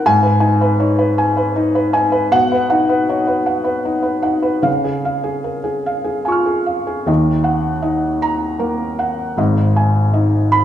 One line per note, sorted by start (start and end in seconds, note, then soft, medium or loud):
0.00 0.11 D#4 medium
0.00 0.11 A#4 medium
0.00 0.11 B4 medium
0.00 0.11 F#5 medium
0.06 2.28 G#2 medium
0.06 0.37 G#5 medium
0.23 0.55 B4 medium
0.40 0.73 D#4 medium
0.40 0.73 G#5 medium
0.61 0.93 B4 medium
0.80 1.11 D#4 medium
0.80 1.00 C#5 medium
0.98 1.30 B4 medium
1.18 1.49 G#5 medium
1.37 1.68 B4 medium
1.56 1.87 D#4 medium
1.75 2.06 B4 medium
1.93 2.25 D#4 medium
1.93 2.25 G#5 medium
2.12 2.32 B4 medium
2.32 4.61 B2 medium
2.32 2.63 F#5 loud
2.52 2.83 B4 medium
2.70 3.01 D#4 medium
2.70 3.01 F#5 medium
2.89 3.20 B4 medium
3.09 3.40 D#4 medium
3.09 3.29 C#5 medium
3.27 3.58 B4 medium
3.46 3.77 F#5 medium
3.64 3.97 B4 medium
3.85 4.18 D#4 medium
4.03 4.36 B4 medium
4.23 4.57 D#4 medium
4.23 4.57 F#5 medium
4.42 4.64 B4 medium
4.62 7.02 C#3 medium
4.62 4.97 F5 medium
4.84 5.17 G#4 medium
5.05 5.38 F5 medium
5.24 5.57 G#4 medium
5.44 5.65 A#4 soft
5.64 5.97 G#4 medium
5.86 6.18 F5 medium
6.04 6.38 G#4 medium
6.25 6.59 F4 medium
6.25 7.03 G#5 soft
6.25 7.05 C#6 soft
6.32 7.07 F6 soft
6.46 6.79 G#4 medium
6.66 6.99 F5 medium
6.87 7.07 G#4 medium
7.06 9.33 D#2 medium
7.06 9.33 D#3 medium
7.06 7.70 D#5 medium
7.44 8.07 F#5 medium
7.82 8.46 D#4 medium
7.82 8.45 D#5 medium
8.22 8.84 A#5 medium
8.59 9.21 A#3 medium
8.59 9.21 A#4 medium
8.99 9.37 F#5 medium
9.37 10.65 G#1 medium
9.37 10.65 G#2 medium
9.37 9.99 D#5 medium
9.76 10.37 G#5 medium
10.13 10.65 D#4 medium
10.13 10.65 D#5 medium
10.52 10.65 B5 medium